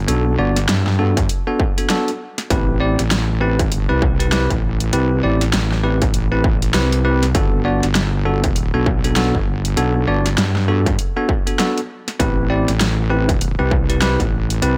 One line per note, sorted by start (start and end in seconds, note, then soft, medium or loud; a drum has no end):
0.08 0.37 B1 medium
0.08 0.35 B3 loud
0.08 0.35 D4 medium
0.08 0.35 F#4 medium
0.08 0.35 A4 loud
0.08 closed hi-hat medium
0.38 0.67 G1 loud
0.38 0.59 B3 medium
0.38 0.58 D4 medium
0.38 0.59 F#4 medium
0.38 0.59 D5 loud
0.56 snare soft
0.56 closed hi-hat medium
0.69 1.27 G2 loud
0.69 snare loud
0.69 closed hi-hat medium
0.87 snare soft
0.99 1.19 B3 loud
0.99 1.19 D4 medium
0.99 1.19 F#4 medium
0.99 1.19 A4 loud
1.17 kick loud
1.17 closed hi-hat medium
1.29 closed hi-hat medium
1.47 1.62 B3 loud
1.47 1.62 D4 medium
1.47 1.62 F#4 medium
1.47 1.62 A4 loud
1.60 kick loud
1.78 1.88 B3 medium
1.78 1.88 D4 medium
1.78 1.88 F#4 medium
1.78 1.88 A4 medium
1.78 closed hi-hat medium
1.90 2.10 B3 medium
1.90 2.10 D4 medium
1.90 2.10 F#4 medium
1.90 2.10 A4 loud
1.90 snare loud
1.90 closed hi-hat medium
2.08 closed hi-hat soft
2.38 snare soft
2.38 closed hi-hat medium
2.50 2.96 A1 loud
2.50 2.78 C4 loud
2.50 2.78 E4 medium
2.50 2.78 G4 medium
2.50 2.78 B4 loud
2.50 kick loud
2.50 closed hi-hat medium
2.80 3.01 C4 medium
2.80 3.01 E4 medium
2.80 3.01 G4 medium
2.80 3.01 D5 loud
2.99 3.61 A1 loud
2.99 snare soft
2.99 closed hi-hat medium
3.11 snare loud
3.11 closed hi-hat medium
3.41 3.61 C4 loud
3.41 3.61 E4 medium
3.41 3.61 G4 medium
3.41 3.61 B4 loud
3.59 3.87 G#1 loud
3.59 kick loud
3.59 closed hi-hat medium
3.72 closed hi-hat medium
3.89 4.48 C2 loud
3.89 4.05 C4 loud
3.89 4.05 E4 medium
3.89 4.05 G4 medium
3.89 4.05 B4 loud
4.02 kick loud
4.20 4.30 C4 medium
4.20 4.30 E4 medium
4.20 4.30 G4 medium
4.20 4.30 B4 medium
4.20 closed hi-hat medium
4.32 4.52 C4 medium
4.32 4.52 E4 medium
4.32 4.52 G4 medium
4.32 4.52 B4 loud
4.32 snare loud
4.32 closed hi-hat medium
4.50 4.91 A1 loud
4.50 kick medium
4.50 closed hi-hat soft
4.80 closed hi-hat medium
4.93 5.21 C2 medium
4.93 5.20 C4 loud
4.93 5.20 E4 medium
4.93 5.20 G4 medium
4.93 5.20 B4 loud
4.93 closed hi-hat medium
5.23 5.52 A1 loud
5.23 5.43 C4 medium
5.23 5.43 E4 medium
5.23 5.43 G4 medium
5.23 5.43 D5 loud
5.41 snare soft
5.41 closed hi-hat medium
5.53 6.12 A1 loud
5.53 snare loud
5.53 closed hi-hat medium
5.72 snare soft
5.84 6.04 C4 medium
5.84 6.04 E4 medium
5.84 6.04 G4 medium
5.84 6.04 B4 loud
6.02 kick loud
6.02 closed hi-hat soft
6.14 6.73 A1 loud
6.14 closed hi-hat medium
6.32 6.47 C4 loud
6.32 6.47 E4 medium
6.32 6.47 G4 medium
6.32 6.47 B4 loud
6.44 kick loud
6.62 closed hi-hat medium
6.74 7.33 C2 loud
6.74 7.02 C4 loud
6.74 7.02 E4 medium
6.74 7.02 G4 loud
6.74 7.02 B4 loud
6.74 snare loud
6.74 closed hi-hat medium
6.92 closed hi-hat soft
7.05 7.25 C4 medium
7.05 7.25 E4 medium
7.05 7.25 G4 medium
7.05 7.25 B4 loud
7.23 snare soft
7.23 closed hi-hat medium
7.35 7.81 G1 loud
7.35 7.62 B3 loud
7.35 7.62 D4 medium
7.35 7.62 F#4 medium
7.35 7.62 A4 loud
7.35 kick loud
7.35 closed hi-hat medium
7.65 7.85 B3 medium
7.65 7.85 D4 medium
7.65 7.85 F#4 medium
7.65 7.85 D5 loud
7.83 8.71 G1 loud
7.83 snare soft
7.83 closed hi-hat medium
7.95 snare loud
7.95 closed hi-hat medium
8.25 8.46 B3 loud
8.25 8.46 D4 medium
8.25 8.46 F#4 medium
8.25 8.46 A4 loud
8.44 kick loud
8.44 closed hi-hat soft
8.56 closed hi-hat medium
8.74 9.32 B1 loud
8.74 8.89 B3 loud
8.74 8.89 D4 medium
8.74 8.89 F#4 loud
8.74 8.89 A4 loud
8.86 kick loud
9.04 9.15 B3 medium
9.04 9.15 D4 medium
9.04 9.15 F#4 medium
9.04 9.15 A4 medium
9.04 closed hi-hat medium
9.16 9.37 B3 medium
9.16 9.37 D4 medium
9.16 9.37 F#4 medium
9.16 9.37 A4 loud
9.16 snare loud
9.16 closed hi-hat medium
9.35 9.75 G1 loud
9.35 kick medium
9.65 closed hi-hat medium
9.77 10.06 B1 loud
9.77 10.05 B3 loud
9.77 10.05 D4 medium
9.77 10.05 F#4 medium
9.77 10.05 A4 loud
9.77 closed hi-hat medium
10.07 10.36 G1 medium
10.07 10.28 B3 medium
10.07 10.28 D4 medium
10.07 10.28 F#4 medium
10.07 10.28 D5 loud
10.26 snare soft
10.26 closed hi-hat medium
10.38 10.97 G2 loud
10.38 snare loud
10.38 closed hi-hat medium
10.56 snare soft
10.68 10.88 B3 medium
10.68 10.89 D4 medium
10.68 10.89 F#4 medium
10.68 10.88 A4 loud
10.86 kick loud
10.86 closed hi-hat soft
10.99 closed hi-hat medium
11.17 11.32 B3 loud
11.17 11.32 D4 loud
11.17 11.32 F#4 loud
11.17 11.32 A4 loud
11.29 kick loud
11.47 11.57 B3 medium
11.47 11.57 D4 medium
11.47 11.57 F#4 medium
11.47 11.57 A4 medium
11.47 closed hi-hat medium
11.59 11.79 B3 medium
11.59 11.79 D4 medium
11.59 11.79 F#4 medium
11.59 11.79 A4 loud
11.59 snare loud
11.59 closed hi-hat medium
11.78 closed hi-hat soft
12.08 snare soft
12.08 closed hi-hat medium
12.20 12.66 A1 loud
12.20 12.47 C4 loud
12.20 12.47 E4 medium
12.20 12.47 G4 medium
12.20 12.47 B4 loud
12.20 kick loud
12.20 closed hi-hat medium
12.50 12.70 C4 medium
12.50 12.70 E4 medium
12.50 12.70 G4 medium
12.50 12.70 D5 loud
12.68 13.56 A1 loud
12.68 snare soft
12.68 closed hi-hat medium
12.81 snare loud
12.81 closed hi-hat medium
13.10 13.31 C4 loud
13.10 13.31 E4 medium
13.10 13.31 G4 medium
13.10 13.31 B4 loud
13.29 kick loud
13.29 closed hi-hat medium
13.41 closed hi-hat medium
13.59 14.17 C2 loud
13.59 13.74 C4 loud
13.59 13.74 E4 medium
13.59 13.74 G4 loud
13.59 13.74 B4 loud
13.71 kick loud
13.89 14.00 C4 medium
13.89 14.00 E4 medium
13.89 14.00 G4 medium
13.89 14.00 B4 medium
13.89 closed hi-hat medium
14.02 14.22 C4 loud
14.02 14.22 E4 medium
14.02 14.22 G4 medium
14.02 14.22 B4 loud
14.02 snare loud
14.02 closed hi-hat medium
14.20 14.60 A1 loud
14.20 kick medium
14.20 closed hi-hat soft
14.50 closed hi-hat medium
14.62 14.78 C2 loud
14.62 14.78 C4 loud
14.62 14.78 E4 medium
14.62 14.78 G4 medium
14.62 14.78 B4 loud
14.62 closed hi-hat medium